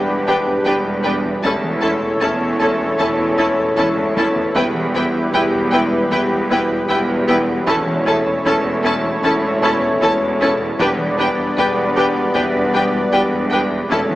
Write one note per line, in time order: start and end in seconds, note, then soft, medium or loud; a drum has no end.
0.00 0.57 E1 medium
0.00 4.52 E1 medium
0.00 0.57 E2 soft
0.00 1.27 G3 soft
0.00 1.44 G3 medium
0.00 1.27 B3 soft
0.00 1.44 D4 medium
0.00 1.44 G4 medium
0.00 1.44 B4 medium
0.08 0.20 E2 soft
0.27 0.39 E2 soft
0.27 0.35 D4 soft
0.27 0.35 G4 soft
0.27 0.36 B4 soft
0.27 0.36 G5 soft
0.47 0.59 E2 soft
0.65 1.35 E1 medium
0.65 1.35 E2 medium
0.65 0.78 E2 medium
0.65 0.75 D4 soft
0.65 0.75 G4 soft
0.65 0.74 B4 soft
0.65 0.74 G5 soft
0.65 taiko medium
0.86 0.98 E2 medium
1.04 1.17 E2 medium
1.04 1.13 D4 soft
1.04 1.13 G4 soft
1.04 1.12 B4 soft
1.04 1.12 G5 soft
1.25 1.37 E2 medium
1.43 2.13 E1 medium
1.43 2.13 E2 medium
1.43 1.56 E2 medium
1.43 7.67 E3 medium
1.43 4.56 A3 medium
1.43 4.52 C#4 soft
1.43 1.53 C#4 soft
1.43 7.67 E4 medium
1.43 1.53 E4 soft
1.43 1.51 A4 soft
1.43 4.56 A4 medium
1.43 4.56 C#5 medium
1.43 1.51 A5 soft
1.43 taiko medium
1.64 1.76 E3 medium
1.82 1.95 E2 medium
1.82 1.91 C#4 soft
1.82 1.91 E4 soft
1.82 1.90 A4 soft
1.82 1.90 A5 soft
2.03 2.14 E2 medium
2.21 2.91 E1 medium
2.21 2.91 E2 medium
2.21 2.34 E2 medium
2.21 2.30 C#4 soft
2.21 2.29 E4 soft
2.21 2.29 A4 soft
2.21 2.29 A5 soft
2.21 taiko medium
2.41 2.53 E2 medium
2.60 2.73 E2 medium
2.60 2.70 C#4 soft
2.60 2.70 E4 soft
2.60 2.68 A4 soft
2.60 2.68 A5 soft
2.80 2.92 E2 medium
2.99 3.69 E1 medium
2.99 3.12 E2 medium
2.99 3.69 E2 medium
2.99 3.09 C#4 soft
2.99 3.09 E4 soft
2.99 3.07 A4 soft
2.99 3.07 A5 soft
2.99 taiko medium
3.19 3.31 E2 medium
3.38 3.50 E2 medium
3.38 3.47 C#4 soft
3.38 3.47 E4 medium
3.38 3.46 A4 soft
3.38 3.46 A5 soft
3.58 3.70 E2 medium
3.77 4.47 E1 medium
3.77 3.89 E2 medium
3.77 4.47 E2 medium
3.77 3.86 C#4 soft
3.77 3.86 E4 soft
3.77 3.86 A4 soft
3.77 3.86 A5 soft
3.77 taiko low-mid medium
3.97 4.09 E2 medium
3.97 taiko low-mid medium
4.16 4.28 E2 medium
4.16 4.25 C#4 soft
4.16 4.25 E4 soft
4.16 4.26 A4 soft
4.16 4.26 A5 soft
4.16 taiko high medium
4.36 4.48 E2 medium
4.36 taiko low medium
4.55 10.75 E1 medium
4.55 5.25 E1 medium
4.55 4.67 E2 medium
4.55 5.25 E2 medium
4.55 7.63 G3 medium
4.55 7.64 B3 medium
4.55 4.64 B3 medium
4.55 4.65 E4 medium
4.55 7.68 G4 medium
4.55 7.68 B4 medium
4.55 4.64 B4 medium
4.55 4.64 G5 medium
4.55 taiko medium
4.75 4.87 E3 medium
4.95 5.07 E2 medium
4.95 5.04 B3 soft
4.95 5.04 E4 soft
4.95 5.03 B4 soft
4.95 5.03 G5 soft
5.14 5.26 E2 soft
5.33 6.03 E1 medium
5.33 5.45 E2 medium
5.33 6.02 E2 medium
5.33 5.43 B3 soft
5.33 5.42 E4 soft
5.33 5.42 B4 medium
5.33 5.42 G5 soft
5.33 taiko medium
5.53 5.65 E2 medium
5.73 5.84 E2 medium
5.73 5.81 B3 soft
5.73 5.81 E4 medium
5.73 5.81 B4 soft
5.73 5.81 G5 soft
5.92 6.04 E2 medium
6.11 6.81 E1 medium
6.11 6.23 E2 medium
6.11 6.80 E2 medium
6.11 6.19 B3 soft
6.11 6.19 E4 soft
6.11 6.20 B4 soft
6.11 6.20 G5 soft
6.11 taiko medium
6.31 6.43 E2 medium
6.50 6.63 E2 medium
6.50 6.58 B3 medium
6.50 6.58 E4 medium
6.50 6.59 B4 soft
6.50 6.59 G5 soft
6.70 6.82 E2 medium
6.90 7.58 E1 medium
6.90 7.58 E2 medium
6.90 7.02 E2 medium
6.90 6.98 B3 soft
6.90 6.98 E4 medium
6.90 6.98 B4 soft
6.90 6.98 G5 soft
6.90 taiko medium
7.09 7.21 E2 medium
7.28 7.40 E2 medium
7.28 7.36 B3 medium
7.28 7.36 E4 medium
7.28 7.36 B4 soft
7.28 7.36 G5 soft
7.48 7.60 E2 medium
7.67 8.37 E1 medium
7.67 7.79 E2 medium
7.67 8.36 E2 medium
7.67 10.76 E3 medium
7.67 10.75 A3 medium
7.67 10.79 C#4 medium
7.67 7.75 C#4 medium
7.67 7.75 E4 medium
7.67 10.76 E4 medium
7.67 7.76 A4 medium
7.67 10.80 A4 medium
7.67 10.80 C#5 medium
7.67 7.76 A5 medium
7.67 taiko medium
7.87 7.99 E3 medium
8.05 8.18 E2 medium
8.05 8.13 C#4 medium
8.05 8.13 E4 soft
8.05 8.15 A4 medium
8.05 8.15 A5 soft
8.26 8.38 E2 medium
8.45 9.14 E1 medium
8.45 8.57 E2 medium
8.45 9.14 E2 medium
8.45 8.53 C#4 medium
8.45 8.53 E4 soft
8.45 8.54 A4 medium
8.45 8.54 A5 medium
8.45 taiko medium
8.64 8.76 E2 medium
8.84 8.96 E2 medium
8.84 8.92 C#4 medium
8.84 8.92 E4 soft
8.84 8.93 A4 soft
8.84 8.93 A5 medium
9.04 9.16 E2 medium
9.23 9.92 E1 medium
9.23 9.35 E2 medium
9.23 9.92 E2 medium
9.23 9.32 C#4 medium
9.23 9.32 E4 medium
9.23 9.32 A4 soft
9.23 9.32 A5 medium
9.23 taiko medium
9.43 9.54 E2 soft
9.62 9.74 E2 medium
9.62 9.71 C#4 medium
9.62 9.71 E4 medium
9.62 9.72 A4 soft
9.62 9.72 A5 medium
9.81 9.93 E2 medium
10.01 10.70 E1 medium
10.01 10.13 E2 medium
10.01 10.70 E2 medium
10.01 10.09 C#4 soft
10.01 10.10 E4 soft
10.01 10.11 A4 medium
10.01 10.11 A5 medium
10.01 taiko medium
10.21 10.32 E2 medium
10.40 10.52 E2 medium
10.40 10.49 C#4 medium
10.40 10.49 E4 medium
10.40 10.50 A4 soft
10.40 10.50 A5 soft
10.59 10.71 E2 medium
10.79 14.15 E1 medium
10.79 11.48 E1 medium
10.79 10.91 E2 medium
10.79 11.48 E2 medium
10.79 13.91 G3 medium
10.79 13.74 G3 medium
10.79 13.74 B3 medium
10.79 13.91 D4 medium
10.79 10.87 D4 medium
10.79 10.87 G4 medium
10.79 13.91 B4 medium
10.79 10.89 B4 medium
10.79 13.91 D5 medium
10.79 10.89 G5 medium
10.79 taiko medium
10.98 11.10 E3 medium
11.18 11.30 E2 medium
11.18 11.26 D4 soft
11.18 11.26 G4 soft
11.18 11.27 B4 soft
11.18 11.28 G5 medium
11.38 11.49 E2 medium
11.57 12.26 E1 medium
11.57 11.69 E2 medium
11.57 12.26 E2 medium
11.57 11.66 D4 soft
11.57 11.65 G4 soft
11.57 11.66 B4 medium
11.57 11.66 G5 soft
11.57 taiko medium
11.77 11.88 E2 medium
11.96 12.08 E2 medium
11.96 12.04 D4 soft
11.96 12.04 G4 medium
11.96 12.05 B4 soft
11.96 12.05 G5 soft
12.16 12.27 E2 medium
12.34 13.04 E1 medium
12.34 13.04 E2 medium
12.34 12.47 E2 medium
12.34 12.42 D4 soft
12.34 12.42 G4 soft
12.34 12.43 B4 soft
12.34 12.43 G5 soft
12.34 taiko medium
12.55 12.67 E2 medium
12.73 12.86 E2 medium
12.73 12.82 D4 soft
12.73 12.81 G4 soft
12.73 12.83 B4 soft
12.73 12.83 G5 soft
12.94 13.05 E2 soft
13.12 13.82 E1 medium
13.12 13.82 E2 medium
13.12 13.25 E2 medium
13.12 13.21 D4 soft
13.12 13.21 G4 soft
13.12 13.21 B4 soft
13.12 13.20 G5 soft
13.12 taiko medium
13.33 13.45 E2 medium
13.52 13.64 E2 medium
13.52 13.60 D4 soft
13.52 13.60 G4 soft
13.52 13.60 B4 soft
13.52 13.60 G5 soft
13.72 13.83 E2 medium
13.90 14.15 E1 medium
13.90 14.15 E2 medium
13.90 14.03 E2 medium
13.90 14.15 E3 medium
13.90 14.15 A3 medium
13.90 13.98 C#4 soft
13.90 14.15 C#4 medium
13.90 13.98 E4 medium
13.90 14.15 E4 medium
13.90 14.15 A4 medium
13.90 13.99 A4 soft
13.90 14.15 C#5 medium
13.90 13.99 A5 soft
13.90 taiko medium
14.10 14.15 E3 soft